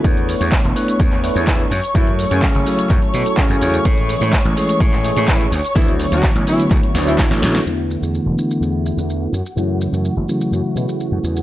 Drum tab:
HH |xxoxxxoxxxoxxxox|xxoxxxoxxxoxxxox|xxoxxxoxxxoxxxox|xxoxxxoxxxoxxxox|
SH |x-xxx-xxx-xxx-xx|x-xxx-xxx-xxx-xx|x-xxx-xxx-xxx-xx|x-xxx-xxx-xxx-xx|
CP |----x----x--x---|----x---x---x---|----x----x--x---|----x---x---x---|
SD |----------------|----------------|----------------|----------o-oooo|
BD |o---o---o---o---|o---o---o---o---|o---o---o---o---|o---o---o---o---|

HH |----------------|----------------|
SH |x-xxx-xxx-xxx-xx|x-xxx-xxx-xxx-xx|
CP |----------------|----------------|
SD |----------------|----------------|
BD |----------------|----------------|